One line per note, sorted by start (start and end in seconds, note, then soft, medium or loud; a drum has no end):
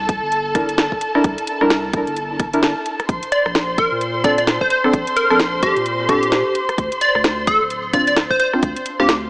0.00 3.10 A4 medium
0.00 3.10 A5 medium
0.09 0.21 C2 loud
0.09 kick loud
0.09 closed hi-hat medium
0.23 0.90 G1 loud
0.32 closed hi-hat medium
0.55 0.67 D4 medium
0.55 0.67 E4 medium
0.55 0.67 A#4 medium
0.55 kick loud
0.55 cross-stick medium
0.55 closed hi-hat loud
0.69 closed hi-hat medium
0.78 snare loud
0.78 closed hi-hat medium
0.92 kick medium
1.01 closed hi-hat medium
1.15 1.23 D4 medium
1.15 1.23 E4 medium
1.15 1.23 A#4 loud
1.15 cross-stick medium
1.24 1.37 C2 loud
1.24 kick loud
1.24 closed hi-hat medium
1.38 closed hi-hat medium
1.47 closed hi-hat loud
1.61 1.92 C2 loud
1.61 1.69 D4 medium
1.61 1.69 E4 medium
1.61 1.69 A#4 loud
1.61 cross-stick medium
1.70 snare loud
1.70 closed hi-hat medium
1.93 2.06 C2 medium
1.93 kick loud
1.93 closed hi-hat medium
2.07 2.74 G1 loud
2.07 closed hi-hat soft
2.16 closed hi-hat medium
2.40 kick loud
2.40 cross-stick medium
2.40 closed hi-hat loud
2.53 2.61 D4 medium
2.53 2.61 E4 medium
2.53 2.61 A#4 medium
2.53 closed hi-hat medium
2.63 snare loud
2.63 closed hi-hat medium
2.86 closed hi-hat medium
3.00 cross-stick medium
3.00 closed hi-hat soft
3.09 3.21 A#1 loud
3.09 9.30 C5 medium
3.09 9.30 C6 medium
3.09 kick loud
3.09 closed hi-hat medium
3.23 closed hi-hat medium
3.32 3.46 D5 medium
3.32 closed hi-hat loud
3.46 3.76 A#1 loud
3.46 cross-stick medium
3.55 snare loud
3.55 closed hi-hat medium
3.78 3.90 A#1 medium
3.78 3.92 A#4 medium
3.78 kick loud
3.78 closed hi-hat medium
3.92 4.59 A#2 loud
4.01 closed hi-hat medium
4.24 4.36 C4 medium
4.24 4.36 D4 medium
4.24 4.36 A4 medium
4.24 4.33 D5 medium
4.24 kick loud
4.24 cross-stick medium
4.24 closed hi-hat loud
4.38 4.44 D5 medium
4.38 closed hi-hat medium
4.47 snare loud
4.47 closed hi-hat medium
4.61 4.67 C5 medium
4.61 kick medium
4.70 4.79 C5 medium
4.70 closed hi-hat medium
4.84 4.92 C4 medium
4.84 4.92 D4 medium
4.84 4.92 A4 loud
4.84 cross-stick soft
4.93 5.06 A#1 loud
4.93 kick loud
4.93 closed hi-hat medium
5.07 closed hi-hat medium
5.16 5.25 A#4 medium
5.16 closed hi-hat loud
5.30 5.61 A#1 loud
5.30 5.38 C4 medium
5.30 5.38 D4 medium
5.30 5.38 A4 loud
5.30 5.36 A#4 medium
5.30 cross-stick soft
5.39 snare loud
5.39 closed hi-hat medium
5.63 5.75 A#1 medium
5.63 5.77 G4 medium
5.63 kick loud
5.63 closed hi-hat medium
5.76 6.43 A#2 loud
5.76 closed hi-hat soft
5.86 closed hi-hat medium
6.09 6.21 C4 medium
6.09 6.21 D4 medium
6.09 6.61 G4 loud
6.09 6.21 A4 loud
6.09 kick loud
6.09 cross-stick soft
6.09 closed hi-hat loud
6.23 closed hi-hat medium
6.32 snare loud
6.32 closed hi-hat medium
6.55 closed hi-hat medium
6.69 cross-stick soft
6.69 closed hi-hat soft
6.78 6.90 D2 loud
6.78 kick loud
6.78 closed hi-hat medium
6.92 closed hi-hat medium
7.01 7.15 D5 loud
7.01 closed hi-hat loud
7.15 7.46 D2 loud
7.15 cross-stick medium
7.24 snare loud
7.24 closed hi-hat medium
7.47 7.60 D2 medium
7.47 7.61 A4 medium
7.47 kick loud
7.47 closed hi-hat medium
7.61 8.28 D1 loud
7.70 closed hi-hat medium
7.93 8.05 C4 medium
7.93 8.05 D4 medium
7.93 8.05 F4 medium
7.93 8.02 D5 medium
7.93 kick loud
7.93 cross-stick medium
7.93 closed hi-hat loud
8.07 8.13 D5 medium
8.07 closed hi-hat medium
8.16 snare loud
8.16 closed hi-hat medium
8.30 8.36 C5 medium
8.30 kick medium
8.40 8.49 C5 medium
8.40 closed hi-hat medium
8.53 8.61 C4 loud
8.53 8.61 D4 medium
8.53 8.61 F4 loud
8.53 cross-stick medium
8.63 8.75 D2 loud
8.63 kick loud
8.63 closed hi-hat medium
8.76 closed hi-hat medium
8.86 closed hi-hat loud
9.00 9.30 D2 loud
9.00 9.07 C4 medium
9.00 9.07 D4 medium
9.00 9.07 F4 loud
9.00 9.09 G4 medium
9.00 cross-stick medium
9.09 snare loud
9.09 closed hi-hat medium